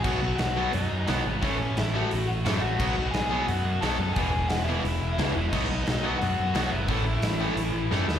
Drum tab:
CC |x-------|--------|x-------|--------|
HH |--o-o-o-|o-o-o-o-|--o-o-o-|o-o-o-o-|
SD |--o---o-|--o---o-|--o---o-|--o---o-|
BD |o-------|o-------|o-------|o-------|

CC |x-------|--------|
HH |--o-o-o-|o-o-o---|
SD |--o---o-|--o---oo|
BD |o-------|o-------|